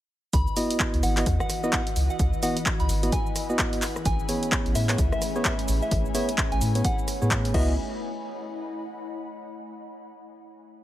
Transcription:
0.33 C#2 E3 E4 F#4 B4 D#5 B5, kick, closed hi-hat, cabasa
0.47 D#5, cabasa
0.57 B3 E4 F#4 D#5, open hi-hat, cabasa
0.70 F#5, closed hi-hat, cabasa
0.80 kick, clap, cabasa
0.94 C#2, closed hi-hat, cabasa
1.03 G#1 F#5, cross-stick, open hi-hat, cabasa
1.17 B3 E4 F#4 D#5, clap, closed hi-hat, cabasa
1.26 E2, kick, closed hi-hat, cabasa
1.40 F#5, cross-stick, cabasa
1.47 B5, cross-stick, open hi-hat, cabasa
1.64 B3 E4 F#4 D#5, cabasa
1.73 F#5, kick, clap, cabasa
1.87 closed hi-hat, cabasa
1.96 C#2, open hi-hat, cabasa
2.10 F#5, cabasa
2.19 C#2, kick, closed hi-hat, cabasa
2.33 cabasa
2.43 B3 E4 F#4 D#5 F#5, open hi-hat, cabasa
2.57 closed hi-hat, cabasa
2.66 kick, clap, cabasa
2.80 C#2 B5, closed hi-hat, cabasa
2.89 G#1, open hi-hat, cabasa
3.03 B3 E4 F#4 D#5, closed hi-hat, cabasa
3.12 G#5, kick, closed hi-hat, cabasa
3.26 cabasa
3.36 cross-stick, open hi-hat, cabasa
3.50 B3 E4 F#4 D#5, cabasa
3.59 kick, clap, cabasa
3.73 closed hi-hat, cabasa
3.82 A3 C#4 G#4, clap, open hi-hat, cabasa
3.96 cross-stick, cabasa
4.03 A1 G#5, kick, closed hi-hat, cabasa
4.07 C#5
4.19 cabasa
4.29 B3 G#4 C#5, open hi-hat, cabasa
4.43 closed hi-hat, cabasa
4.52 kick, clap, cabasa
4.66 A1, closed hi-hat, cabasa
4.75 A2 E5, cross-stick, open hi-hat, cabasa
4.89 B3 G#4 C#5, clap, closed hi-hat, cabasa
4.98 C#2, kick, closed hi-hat, cabasa
5.12 E5, cross-stick, cabasa
5.22 cross-stick, open hi-hat, cabasa
5.36 B3 G#4 C#5, cabasa
5.45 E5, kick, clap, cabasa
5.59 closed hi-hat, cabasa
5.68 A1, open hi-hat, cabasa
5.82 E5, cabasa
5.91 A1, kick, closed hi-hat, cabasa
6.05 cabasa
6.15 B3 G#4 C#5 E5, open hi-hat, cabasa
6.29 closed hi-hat, cabasa
6.38 kick, clap, cabasa
6.52 A1 G#5, closed hi-hat, cabasa
6.61 A2, open hi-hat, cabasa
6.75 B3 G#4 C#5, closed hi-hat, cabasa
6.84 F#5, kick, closed hi-hat, cabasa
6.99 cabasa
7.08 cross-stick, open hi-hat, cabasa
7.22 A2 B3 G#4 C#5, cabasa
7.31 kick, clap, cabasa
7.45 closed hi-hat, cabasa
7.54 C#2 B3 D#4 E4 F#4 B4 D#5 E5, kick, crash
7.63 D#5
7.93 F#5
7.99 B5

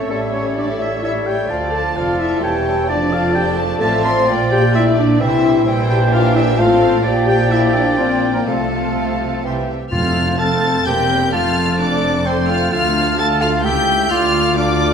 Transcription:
Already playing: A3 A4 C#5 E5
0.08 A1 A2 G3 A3 C#4 A4 C#5 E5
0.32 C#4 C#5
0.56 A3 D4 D5 E5
0.78 E4 E5
1.01 G3 E4 C#5 E5
1.24 G4 G5
1.49 D2 F3 A3 F4 D5 F5 A5
1.70 A4 F5 A5
1.94 F1 F2 F3 A3 F4 A4 D5 F5 A5
2.18 E4 E5
2.42 E1 E2 E3 G3 E4 G4 C#5 G5 A5
2.66 G3
2.89 F1 F2 F3 A3 D4 D5 A5
3.12 F4 F5
3.34 D4 G4 G5
3.57 A4 A5
3.80 A1 A2 F3 C4 F4 A4 D5 E5 F5 A5
4.04 C5 C6
4.27 A#1 A#2 F3 A#3 F4 D5 G5
4.51 G4 D5 G5
4.74 A3 D4 E4 E5
4.97 D4 D5
5.19 C2 C3 E3 G3 E4 C5 E5 G5
5.66 A#1 A#2 E3 G3 E4 C5 G5
5.89 D4 G4 G5
6.13 F4 G4 A#4 F5 G5
6.35 E4 E5
6.55 A1 A2 C4 F4 A4 C5 F5 A5
6.59 F3 C5 F5
6.82 C5
7.04 A#1 A#2 F3 A#3 G4 D5 G5
7.26 G4 D5 G5
7.49 E4 E5
7.74 D4 D5
7.97 C4 F4 C5
8.34 A#3 A#4
8.46 C2 C3 F3 A3 F4 A4 C5 F5 A5
9.44 C2 C3 E3 G3 G4 C5 E5 G5 C6
9.91 F1 F2 A3 C4 F4 A4 F5 F6
10.39 C4 A4 F5 A5 A6
10.86 E1 E2 A#3 C4 G4 A#4 G5 G6
11.32 F1 F2 A3 F4 A4 F5 A5 F6
11.79 D4 D5 D6
12.25 A3 C4 A4 C5 G5 C6
12.48 F4 F5 F6
12.72 D2 A3 D4 F4 A4 F5 F6
13.18 A3 A4 A5 A6
13.41 F4 F5 F6
13.64 C#2 A3 E4 G4 A4 E5 G5 G6
13.89 G4
14.10 D2 A3 F4 D5 F5 F6
14.57 A3 D4 F4 D5 F5 D6

